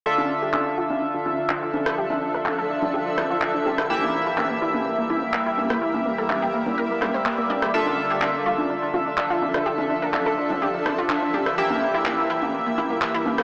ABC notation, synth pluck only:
X:1
M:4/4
L:1/16
Q:1/4=125
K:Dm
V:1 name="Synth pluck"
A D D G D D F D D D F D D F D D | G D D B D A D D G D D F D D G D | G B, B, E B, B, E B, B, B, E B, B, E B, B, | E B, B, A B, G B, B, B B, B, c B, B, d B, |
A D D G D D F D D D F D D F D D | G D D B D A D D G D D F D D G D | G B, B, E B, B, E B, B, B, E B, B, E B, B, |]